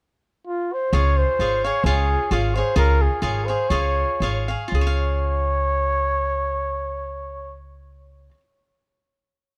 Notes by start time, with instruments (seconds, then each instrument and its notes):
0.47 trumpet F4
0.73 trumpet C5
0.93 upright bass C#2, cavaquinho F4 G#4 C#5 F5, trumpet C#5
1.17 trumpet C5
1.39 upright bass G#1, cavaquinho F4 G#4 C#5 F5
1.64 cavaquinho G#4 C#5 F5, trumpet C#5
1.84 upright bass C#2, cavaquinho F4 G#4 C#5 F5, trumpet G#4
2.31 upright bass G#1, cavaquinho F4 G#4 C#5 F5, trumpet F4
2.55 cavaquinho G#4 C#5 F5, trumpet C5
2.76 upright bass C#2, cavaquinho F4 G#4 C#5 F5, trumpet A#4
3.02 trumpet G#4
3.22 upright bass G#1, cavaquinho F4 G#4 C#5 F5
3.46 cavaquinho G#4 C#5 F5, trumpet C5
3.69 upright bass C#2, cavaquinho F4 G#4 C#5 F5, trumpet C#5
4.20 upright bass G#1, cavaquinho F4 G#4 C#5 F5
4.48 cavaquinho G#4 C#5 F5
4.68 upright bass C#2, cavaquinho F4
4.72 cavaquinho G#4, trumpet C#5
4.81 cavaquinho C#5
4.87 cavaquinho F5